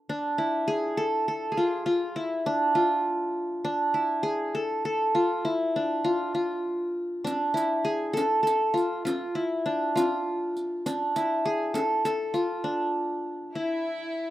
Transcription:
0.09 1.59 D4 medium
0.38 1.63 E4 medium
0.68 1.03 G#4 medium
0.97 1.28 A4 medium
1.28 1.58 A4 medium
1.52 2.73 G#4 medium
1.57 1.85 F4 medium
1.86 2.22 F4 medium
2.16 2.81 E4 medium
2.46 3.64 D4 medium
2.75 4.00 F4 medium
3.65 5.14 D4 medium
3.94 5.21 E4 medium
4.23 4.61 G#4 medium
4.55 4.85 A4 medium
4.85 6.02 A4 medium
5.15 5.51 F4 medium
5.45 6.10 E4 medium
5.76 7.24 D4 medium
6.04 6.34 F4 medium
6.35 7.60 F4 medium
7.24 8.74 D4 medium
7.24 riq medium
7.54 8.80 E4 medium
7.54 riq soft
7.85 8.19 G#4 medium
8.13 8.42 A4 medium
8.13 riq medium
8.43 9.60 A4 medium
8.47 riq soft
8.74 9.05 F4 medium
8.74 riq soft
9.05 9.41 F4 medium
9.05 riq medium
9.35 10.02 E4 medium
9.66 10.86 D4 medium
9.96 11.22 F4 medium
9.96 riq medium
10.57 riq soft
10.86 12.35 D4 medium
10.86 riq soft
11.16 12.40 E4 medium
11.16 riq soft
11.45 11.80 G#4 medium
11.74 12.05 A4 medium
11.74 riq medium
12.05 13.22 A4 medium
12.05 riq soft
12.34 13.61 F4 medium
12.34 riq soft
12.64 14.13 D4 medium
13.54 14.30 E4 medium

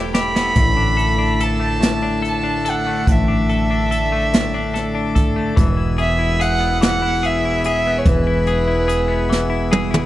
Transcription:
0.00 0.52 E1 medium
0.00 0.52 E3 medium
0.00 0.80 E3 medium
0.00 5.53 A3 soft
0.00 0.35 B3 soft
0.00 0.76 E4 soft
0.00 0.13 G4 soft
0.00 0.52 G4 medium
0.14 0.65 G4 soft
0.14 1.45 B5 medium
0.14 snare medium
0.36 0.65 B3 soft
0.36 snare medium
0.56 3.03 A1 medium
0.56 1.79 A2 medium
0.56 5.54 D3 soft
0.56 3.05 E4 medium
0.56 kick medium
0.56 closed hi-hat medium
0.77 1.17 D4 soft
0.97 1.40 A4 medium
0.97 closed hi-hat soft
1.18 2.01 D4 soft
1.40 2.21 A4 medium
1.40 2.26 A5 medium
1.40 closed hi-hat medium
1.60 2.85 A3 soft
1.80 3.06 A2 medium
1.80 snare medium
1.80 closed hi-hat medium
2.03 2.42 D4 medium
2.22 2.64 A4 medium
2.22 closed hi-hat soft
2.28 2.71 A5 medium
2.44 3.27 D4 soft
2.65 3.48 A4 soft
2.65 closed hi-hat medium
2.70 3.13 F#5 medium
2.87 4.11 A3 soft
3.07 5.53 A1 medium
3.07 4.32 A2 medium
3.07 5.55 D4 medium
3.07 5.18 E5 medium
3.07 kick medium
3.07 closed hi-hat medium
3.28 3.69 D4 soft
3.49 3.90 A4 soft
3.49 closed hi-hat soft
3.71 4.53 D4 soft
3.91 4.73 A4 soft
3.91 closed hi-hat medium
4.12 5.35 A3 soft
4.33 5.66 A2 medium
4.33 snare loud
4.33 closed hi-hat medium
4.54 4.93 D4 medium
4.74 5.14 A4 medium
4.74 snare soft
4.74 closed hi-hat medium
4.95 5.65 D4 medium
5.15 5.65 A4 soft
5.15 kick medium
5.15 closed hi-hat medium
5.36 5.65 A3 soft
5.56 8.02 E1 medium
5.56 10.06 B2 medium
5.56 6.81 E3 medium
5.56 10.06 G#3 medium
5.56 10.06 E4 medium
5.56 kick loud
5.56 closed hi-hat medium
5.77 6.18 E4 soft
5.98 6.39 G#4 medium
5.98 6.43 E5 medium
5.98 closed hi-hat soft
6.19 7.02 E4 soft
6.40 7.23 G#4 medium
6.40 6.82 F#5 medium
6.40 closed hi-hat medium
6.60 7.87 B3 soft
6.81 8.06 E3 medium
6.81 7.28 F#5 medium
6.81 snare medium
6.81 closed hi-hat medium
7.02 7.45 E4 medium
7.23 7.65 G#4 medium
7.23 7.66 E5 medium
7.23 closed hi-hat soft
7.45 8.27 E4 soft
7.64 8.47 G#4 medium
7.64 8.00 E5 medium
7.64 closed hi-hat medium
7.87 9.08 B3 soft
7.99 8.11 C#5 medium
8.06 10.06 E1 medium
8.06 9.29 E3 medium
8.06 9.75 B4 medium
8.06 kick loud
8.06 closed hi-hat medium
8.27 8.67 E4 medium
8.47 8.88 G#4 medium
8.47 closed hi-hat soft
8.68 9.49 E4 soft
8.88 9.71 G#4 medium
8.88 closed hi-hat medium
9.08 10.06 B3 soft
9.30 10.06 E3 medium
9.30 snare medium
9.50 9.90 E4 medium
9.71 10.06 G#4 medium
9.71 high tom medium
9.91 10.06 E4 soft
9.91 mid tom medium

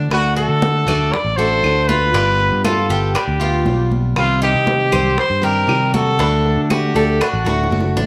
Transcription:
0.00 0.10 A3 soft
0.00 0.10 D4 medium
0.00 0.11 D4 medium
0.00 0.11 F#4 medium
0.10 0.47 D2 medium
0.10 0.86 D3 medium
0.10 0.86 A3 medium
0.10 0.87 D4 medium
0.10 0.35 F#4 loud
0.10 0.85 F#4 medium
0.10 high bongo medium
0.10 high conga soft
0.10 claves medium
0.36 0.86 F#4 medium
0.36 1.14 A4 loud
0.36 high bongo soft
0.36 high conga soft
0.49 0.85 D3 medium
0.62 high bongo medium
0.62 high conga loud
0.87 1.11 D2 medium
0.87 1.12 A3 medium
0.87 1.12 D4 medium
0.87 1.11 F#4 medium
0.87 1.37 D5 medium
0.87 high bongo soft
0.87 high conga soft
0.87 low conga medium
0.87 claves medium
1.12 1.38 D5 loud
1.12 muted steel-string acoustic guitar stroke medium
1.12 high bongo medium
1.12 high conga soft
1.12 low conga medium
1.25 1.61 A1 medium
1.37 1.63 A3 medium
1.37 1.63 D4 medium
1.37 1.62 F#4 medium
1.37 1.87 A4 medium
1.37 1.89 C5 loud
1.37 high bongo soft
1.37 high conga soft
1.63 2.11 D2 loud
1.63 2.13 D3 soft
1.63 2.13 A3 medium
1.63 2.14 D4 medium
1.63 2.14 F#4 medium
1.63 high bongo soft
1.63 low bongo medium
1.63 high conga soft
1.63 claves medium
1.88 2.13 F4 medium
1.88 2.64 B4 loud
1.88 high conga medium
2.14 2.50 G1 loud
2.14 2.92 G3 medium
2.14 2.90 B3 medium
2.14 2.63 D4 medium
2.14 2.88 F4 medium
2.14 high bongo medium
2.14 high conga soft
2.40 high bongo soft
2.40 high conga soft
2.52 2.88 G2 medium
2.64 2.89 F4 medium
2.64 3.12 A4 medium
2.64 high bongo medium
2.64 high conga medium
2.64 claves medium
2.89 3.14 G1 medium
2.89 3.14 B3 medium
2.89 3.14 F4 medium
2.89 3.15 G4 medium
2.89 high bongo soft
2.89 high conga soft
3.14 3.40 D4 medium
3.14 3.87 G4 medium
3.14 muted steel-string acoustic guitar stroke medium
3.14 high bongo medium
3.14 high conga soft
3.14 claves medium
3.28 3.64 D2 medium
3.40 3.66 B3 medium
3.40 3.65 F4 medium
3.40 3.90 F4 medium
3.40 high bongo soft
3.40 high conga soft
3.65 4.14 B1 loud
3.65 4.15 G3 medium
3.65 4.16 B3 medium
3.65 4.17 F4 medium
3.65 high bongo soft
3.65 low bongo medium
3.65 high conga medium
3.91 high conga medium
4.16 4.52 C2 loud
4.16 4.91 C3 medium
4.16 4.92 D#3 medium
4.16 4.92 G3 medium
4.16 4.91 C4 medium
4.16 4.40 F4 loud
4.16 4.91 G4 medium
4.16 high bongo medium
4.16 claves medium
4.42 4.91 D#4 medium
4.42 5.15 G4 loud
4.42 high bongo soft
4.42 high conga soft
4.55 4.91 C3 medium
4.67 high bongo medium
4.67 high conga medium
4.92 5.17 C2 medium
4.92 5.16 D#3 medium
4.92 5.17 G3 medium
4.92 5.17 C4 medium
4.92 5.17 G4 medium
4.92 5.42 C5 medium
4.92 high bongo soft
4.92 high conga soft
4.92 low conga medium
4.92 claves medium
5.17 5.45 C5 loud
5.17 muted steel-string acoustic guitar stroke medium
5.17 high bongo medium
5.17 high conga soft
5.30 5.66 G2 medium
5.42 5.66 D#3 medium
5.42 5.67 G3 medium
5.42 5.67 C4 medium
5.42 5.67 G4 medium
5.42 5.92 G4 medium
5.42 5.94 A#4 loud
5.42 high bongo soft
5.42 high conga soft
5.67 6.16 C3 loud
5.67 6.18 D#3 medium
5.67 6.18 G3 medium
5.67 6.19 C4 medium
5.67 6.19 G4 medium
5.67 high bongo soft
5.67 low bongo medium
5.67 high conga soft
5.67 claves medium
5.94 6.19 F#4 medium
5.94 6.60 A4 loud
5.94 high conga medium
6.18 6.55 D2 loud
6.18 6.94 D3 medium
6.18 6.94 A3 medium
6.18 6.68 D4 medium
6.18 6.95 D4 medium
6.18 6.93 F#4 medium
6.18 high bongo medium
6.18 high conga soft
6.45 high bongo soft
6.45 high conga soft
6.57 6.94 D3 medium
6.63 6.73 A4 medium
6.70 6.95 F#4 medium
6.70 7.24 G4 medium
6.70 high bongo medium
6.70 high conga medium
6.70 claves medium
6.94 7.19 D2 medium
6.94 7.20 A3 medium
6.94 7.20 D4 medium
6.94 7.19 F#4 medium
6.94 7.20 A4 medium
6.94 high bongo soft
6.94 high conga soft
7.21 7.46 D4 medium
7.21 7.98 F#4 medium
7.21 high bongo medium
7.21 high conga soft
7.21 claves medium
7.33 7.45 A1 medium
7.45 7.69 D1 medium
7.45 7.70 A3 medium
7.45 7.70 D4 medium
7.45 7.70 F#4 medium
7.45 7.95 F#4 medium
7.45 high bongo medium
7.45 high conga soft
7.64 low bongo medium
7.70 7.94 F#1 medium
7.70 8.06 D3 medium
7.70 8.06 A3 soft
7.70 8.06 D4 medium
7.70 8.06 F#4 medium
7.70 high conga medium
7.80 low bongo medium
7.96 8.06 A1 medium
7.96 8.06 D4 medium
7.96 low bongo medium
7.96 high conga medium

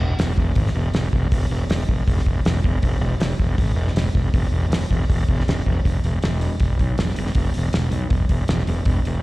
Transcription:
0.00 0.13 E1 medium
0.19 0.32 E1 medium
0.19 snare loud
0.19 open hi-hat medium
0.38 0.51 E1 medium
0.38 kick medium
0.55 0.69 G#1 medium
0.55 kick loud
0.55 open hi-hat medium
0.67 snare soft
0.75 0.88 E1 medium
0.94 1.07 E1 medium
0.94 snare medium
0.94 open hi-hat medium
1.13 1.26 E1 medium
1.13 kick medium
1.32 1.45 E1 medium
1.32 kick loud
1.32 open hi-hat medium
1.50 1.63 E1 medium
1.69 1.82 E1 medium
1.69 snare loud
1.69 open hi-hat medium
1.89 2.02 E1 medium
1.89 kick medium
2.07 2.20 E1 loud
2.07 kick loud
2.07 open hi-hat medium
2.19 snare soft
2.26 2.39 E1 medium
2.26 kick medium
2.45 2.58 E1 medium
2.45 snare loud
2.45 open hi-hat medium
2.64 2.77 E1 loud
2.64 kick medium
2.82 2.96 E1 loud
2.82 kick loud
2.82 open hi-hat medium
3.01 3.14 E1 loud
3.19 3.32 E1 medium
3.19 snare loud
3.19 open hi-hat medium
3.40 3.52 E1 medium
3.40 kick medium
3.58 3.71 G#1 loud
3.58 kick loud
3.58 open hi-hat medium
3.75 3.89 E1 medium
3.88 snare soft
3.94 4.08 E1 medium
3.94 snare loud
3.94 open hi-hat medium
4.15 4.28 E1 medium
4.15 kick medium
4.34 4.46 E1 medium
4.34 kick loud
4.34 open hi-hat medium
4.52 4.65 E1 medium
4.70 4.83 E1 medium
4.70 snare loud
4.70 open hi-hat medium
4.90 5.03 E1 medium
4.90 kick medium
5.10 5.22 E1 medium
5.10 kick loud
5.10 open hi-hat medium
5.29 5.41 E1 medium
5.29 kick medium
5.40 snare soft
5.48 5.60 E1 medium
5.48 snare loud
5.48 open hi-hat medium
5.66 5.79 E1 medium
5.66 kick medium
5.85 5.97 E1 medium
5.85 kick loud
5.85 open hi-hat medium
6.04 6.16 E1 medium
6.04 open hi-hat medium
6.23 6.47 E1 medium
6.23 snare loud
6.23 open hi-hat medium
6.41 open hi-hat soft
6.60 6.73 E1 medium
6.60 kick loud
6.60 open hi-hat medium
6.79 6.91 B1 medium
6.79 kick medium
6.79 open hi-hat medium
6.98 7.10 E1 medium
6.98 snare medium
6.98 open hi-hat medium
7.09 snare soft
7.16 7.29 E1 medium
7.16 open hi-hat medium
7.27 snare soft
7.35 7.48 E1 loud
7.35 kick loud
7.35 open hi-hat medium
7.54 7.68 E1 medium
7.54 open hi-hat medium
7.73 7.86 E1 medium
7.73 snare loud
7.73 open hi-hat medium
7.91 8.04 B1 medium
7.91 open hi-hat medium
8.10 8.23 E1 medium
8.10 kick loud
8.10 open hi-hat medium
8.29 8.42 E1 medium
8.29 kick medium
8.29 open hi-hat medium
8.48 8.61 E1 medium
8.48 snare loud
8.48 open hi-hat medium
8.59 snare soft
8.67 8.80 E1 medium
8.67 open hi-hat medium
8.85 8.98 E1 medium
8.85 kick loud
8.85 open hi-hat medium
9.05 9.18 E1 medium
9.05 open hi-hat medium

